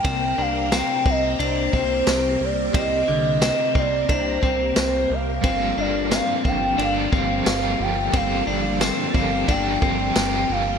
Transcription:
<<
  \new Staff \with { instrumentName = "Soft synth lead" } { \time 4/4 \key c \dorian \tempo 4 = 89 g''8 f''8 g''8 ees''8 c''4. d''8 | ees''4. d''8 c''4. f''8~ | f''8 d''8 f''8 g''8 f''4. g''8 | f''4 r8 f''8 g''4 g''8 f''8 | }
  \new Staff \with { instrumentName = "String machine" } { \time 4/4 \key c \dorian << { <bes c' bes'>1~ | <bes c' bes'>1~ | <bes c' bes'>1~ | <bes c' bes'>1 | } \\ { <c g'>1~ | <c g'>1 | <g f' a'>1~ | <g f' a'>1 | } >> }
  \new Staff \with { instrumentName = "Clean electric guitar" } { \time 4/4 \key c \dorian c'8 d'8 c'8 c'8 d'8 c'4 r8 | c'8 d8 c'8 c'8 d'8 c'4 r8 | c'8 d'8 c'8 c'8 d'8 c'4 r8 | c'8 d'8 c'8 c'8 d'8 c'4 r8 | }
  \new Staff \with { instrumentName = "Overdriven electric guitar" } { \time 4/4 \key c \dorian r1 | r1 | <g, d f bes d' g'>2 <f bes d' g'>4 <f bes d' g'>4 | <g, d f bes d' g'>4. <f bes d' g'>8 <f bes d' g'>4 <f bes d' g'>4 | }
  \new Staff \with { instrumentName = "Analog synth bass" } { \clef bass \time 4/4 \key c \dorian c,8 c,8. r16 c,8 c,8 c,8 c,8 c,8 | c,8 c,8. r16 c,8 c,8 c,8 c,8 c,8 | g,,8 g,,8. r16 g,,8 g,,8 g,,8 g,,8 g,,8 | g,,8 g,,8. r16 g,,8 g,,8 g,,8 g,,8 g,,8 | }
  \new DrumStaff \with { instrumentName = "Drums" } \drummode { \time 4/4 <bd cymr>4 <cymr sn tamb>8 bd8 cymr8 bd8 <cymr sn tamb>4 | <bd cymr>4 <cymr sn tamb>8 bd8 <bd cymr>8 bd8 <cymr sn tamb>4 | <bd cymr>4 <cymr sn tamb>8 bd8 cymr8 bd8 <cymr sn tamb>4 | <bd cymr>4 <cymr sn tamb>8 bd8 <bd cymr>8 bd8 <cymr sn tamb>4 | }
>>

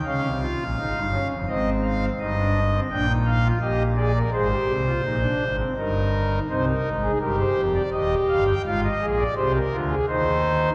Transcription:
<<
  \new Staff \with { instrumentName = "Pipe organ" } { \time 3/4 \key aes \major \tempo 4 = 84 << { f''2 ees''8 f''8 | ees''4 g''8 f''8 ees''8 d''8 | c''2 bes'4 | \key c \minor c''16 bes'8 aes'16 bes'16 c''8 d''16 ees''8 f''16 g''16 |
f''16 ees''8 d''16 c''16 bes'8 aes'16 c''4 | } \\ { des'8 f'8 ees'8 des'8 c'4 | ees'16 d'8 c'16 d'16 ees'8 f'16 g'8 aes'16 bes'16 | aes'16 g'8 f'16 ees'16 d'8 c'16 ees'4 | ees'4 g'4 g'4 |
f'8 aes'8 g'8 f'8 ees'4 | } >> }
  \new Staff \with { instrumentName = "Pipe organ" } { \clef bass \time 3/4 \key aes \major <des, des>16 <c, c>8 <bes,, bes,>16 <aes,, aes,>16 <g,, g,>8 <f,, f,>16 <aes,, aes,>4 | <g,, g,>4 <bes,, bes,>4 <bes,, bes,>4 | <aes,, aes,>8 <c, c>8 <bes,, bes,>8 <aes,, aes,>8 <g,, g,>4 | \key c \minor <c, c>8 <aes,, aes,>8 <g,, g,>8 <f,, f,>8 <ees,, ees,>8 <g,, g,>8 |
<aes,, aes,>8 <bes,, bes,>8 <c, c>8 <d, d>8 <ees, ees>4 | }
>>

